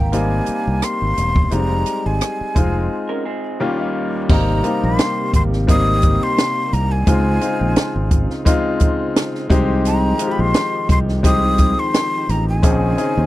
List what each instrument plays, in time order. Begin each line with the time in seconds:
Already playing: fingered electric bass G#1, grand piano A#3 C4 D#4 G4, vibraphone A#4 F5, flute G5
0.02 vibraphone A#5
0.12 grand piano G3 A#3 C4 D#4, flute G#5, closed hi-hat
0.46 muted fingered electric bass stroke, closed hi-hat
0.67 fingered electric bass C2
0.82 flute C6, cross-stick, closed hi-hat
1.02 fingered electric bass G#1
1.17 fingered electric bass E1, closed hi-hat
1.36 kick
1.51 fingered electric bass F1, grand piano G3 G#3 C4 D#4, flute A#5, closed hi-hat
1.86 closed hi-hat
2.06 fingered electric bass G#1, flute G#5
2.21 cross-stick, closed hi-hat
2.41 muted fingered electric bass stroke
2.55 fingered electric bass F1, grand piano G#3 C4 D#4 F4, kick, closed hi-hat
3.09 clean electric guitar C#4 A#4
3.25 clean electric guitar C4 G#4
3.60 grand piano D#2 G3 A#3 C#4 F4 G5, clean electric guitar F4
3.79 clean electric guitar G3 D#4, grand piano F5
4.29 fingered electric bass G#1, tonewheel organ C3 G3 A#3 G4, grand piano G3 A#3 C4 D#4, flute A#5, kick, crash
4.63 grand piano G3 A#3 C4 D#4, vibraphone F5, closed hi-hat
4.83 fingered electric bass A#1, flute C6
4.99 snare, closed hi-hat
5.34 fingered electric bass G#1, flute C6, kick, closed hi-hat
5.53 snare
5.67 grand piano G3 A#3 C4 D#4, flute D#6, kick, closed hi-hat
6.02 kick, closed hi-hat
6.23 flute C6
6.38 snare, closed hi-hat
6.73 fingered electric bass C2, flute A#5, closed hi-hat
6.92 flute G#5
7.07 fingered electric bass C#2, tonewheel organ C#3 C4 D#4 F4, grand piano G#3 C4 D#4 F4, kick, closed hi-hat
7.41 grand piano G#3 C4 D#4 F4, closed hi-hat
7.61 fingered electric bass A#1
7.76 muted fingered electric bass stroke, snare, closed hi-hat
7.96 fingered electric bass G#1
8.11 kick, closed hi-hat
8.30 snare
8.45 grand piano G#3 C4 D#4 F4, kick, closed hi-hat
8.80 kick, closed hi-hat
9.16 snare, closed hi-hat
9.35 snare
9.50 fingered electric bass C2, tonewheel organ D#3 F3 G4, grand piano G#3 C4 D#4 G4, kick, closed hi-hat
9.85 flute A#5, closed hi-hat
10.19 grand piano G#3 C4 D#4 F4, closed hi-hat
10.27 grand piano G4
10.32 flute B5
10.39 fingered electric bass A#1, flute C6
10.54 snare, closed hi-hat
10.89 fingered electric bass C2, flute C6, kick, closed hi-hat
11.09 snare
11.23 grand piano G#3 C4 D#4 G4, flute D#6, kick, closed hi-hat
11.58 kick, closed hi-hat
11.79 flute C6
11.94 snare, closed hi-hat
12.29 fingered electric bass A1, flute A#5, closed hi-hat
12.49 flute G#5
12.62 fingered electric bass A#1, tonewheel organ C#3 C5, grand piano C4 C#4 D#4 G#4, kick, closed hi-hat
12.97 grand piano C4 C#4 D#4 G#4, closed hi-hat
13.17 fingered electric bass D#2